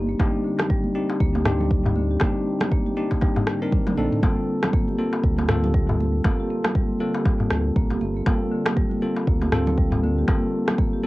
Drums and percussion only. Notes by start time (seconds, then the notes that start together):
0.20 kick, darbuka tek, high conga
0.59 cross-stick, darbuka tek, high conga, low conga
0.70 kick
0.84 high conga
1.10 darbuka ka
1.20 kick
1.35 darbuka ka, high conga
1.45 cross-stick, darbuka dum
1.61 low conga
1.71 kick
1.86 darbuka ka, darbuka dum
1.96 high conga
2.20 kick, cross-stick, darbuka tek, high conga
2.61 cross-stick, darbuka tek, high conga, low conga
2.72 kick
2.87 high conga
3.11 kick, darbuka ka
3.21 kick, darbuka tek
3.36 darbuka tek, darbuka dum
3.47 cross-stick
3.72 kick, high tom
3.87 high tom, darbuka ka, high conga, low conga
3.97 high conga
4.12 mid tom
4.23 kick, high conga, darbuka tek
4.63 cross-stick, darbuka tek, high conga, low conga
4.73 kick
4.89 high conga
5.13 darbuka ka
5.24 kick
5.38 darbuka ka, high conga
5.49 cross-stick, darbuka dum
5.64 low conga
5.74 kick
5.89 darbuka ka, darbuka dum
6.00 high conga
6.24 kick, darbuka tek, high conga
6.64 cross-stick, darbuka tek, high conga, low conga
6.75 kick
7.14 darbuka ka
7.25 kick, darbuka tek
7.40 darbuka dum
7.50 cross-stick
7.76 kick
7.90 darbuka ka, high conga
8.01 high conga
8.26 kick, darbuka tek, high conga
8.66 cross-stick, darbuka tek, high conga, low conga
8.77 kick
8.91 high conga
9.16 darbuka ka
9.27 kick
9.41 darbuka ka, high conga
9.52 cross-stick, darbuka dum
9.67 low conga
9.78 kick
9.92 darbuka ka, darbuka dum
10.04 high conga
10.28 kick, darbuka tek, high conga
10.68 cross-stick, darbuka tek, high conga, low conga
10.78 kick